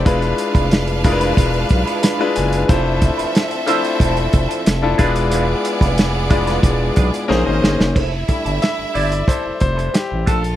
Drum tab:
CC |----------------|----------------|----------------|x---------------|
HH |xxxxxxxxxxxxx-xx|x-xxxxxxxxxxx-xx|x-xxx-xxx-xx----|--xxx-oxx-xxx-xx|
SD |----o-------o---|----o-------o---|----o--o----o-oo|----o-------o---|
BD |o--o--o-o-o-----|o-o-----o-o---o-|---o--o-o-o-----|o-o-----o-o---o-|